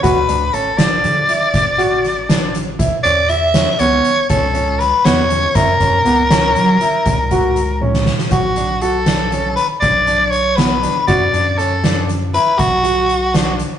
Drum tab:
HH |x-x-x-x-x-x-x-x-x-x-x-|x-x-x-x-x-x-x-x-x-x-x-|x-x-x-x-x-x-x-x-x-----|x-x-x-x-x-x-x-x-x-x-x-|
SD |------o-----o---o-o---|------o---------o-o---|------o------------ooo|------o-----o-----o-o-|
T1 |----------------------|----------------------|------------------o---|----------------------|
BD |o-----------o---------|o-----------o---------|o-o---------o-o-------|o-----------o---------|

HH |x-x-x-x-x-x-x-x-x-x-x-|
SD |--o-o-o-----------o---|
T1 |----------------------|
BD |o-----------o---------|